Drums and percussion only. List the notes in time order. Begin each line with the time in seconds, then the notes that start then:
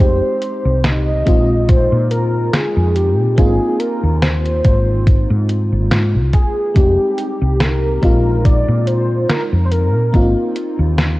0.00 kick, closed hi-hat
0.42 closed hi-hat
0.84 snare, closed hi-hat
1.26 kick, closed hi-hat
1.69 kick, closed hi-hat
2.11 closed hi-hat
2.53 snare, closed hi-hat
2.96 closed hi-hat
3.38 kick, closed hi-hat
3.80 closed hi-hat
4.22 snare, closed hi-hat
4.45 closed hi-hat
4.64 kick, closed hi-hat
5.07 kick, closed hi-hat
5.49 closed hi-hat
5.91 snare, closed hi-hat
6.33 kick, closed hi-hat
6.76 kick, closed hi-hat
7.18 closed hi-hat
7.60 snare, closed hi-hat
8.03 kick, closed hi-hat
8.45 kick, closed hi-hat
8.87 closed hi-hat
9.29 snare, closed hi-hat
9.72 closed hi-hat
10.14 kick, closed hi-hat
10.56 closed hi-hat
10.99 snare, closed hi-hat